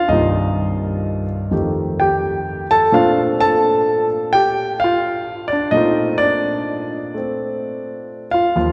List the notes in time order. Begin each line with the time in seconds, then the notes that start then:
Already playing: G3
0.08 C2 G2 D#3 A#3 D#4 D#5
0.12 F4
1.51 F2 D#3 A3 G4
2.00 G4 G5
2.71 A4 A5
2.92 A#2 A3 C4 D4 F4 F5
3.41 A4 A5
4.33 G4 G5
4.80 F5
4.84 F4
5.48 D5
5.53 D4
5.71 A#2 A3 D#5
5.75 C4 D#4 F4
6.18 D5
6.23 D4
7.14 A3 C4
8.31 F4 F5
8.55 D#2 F3 F4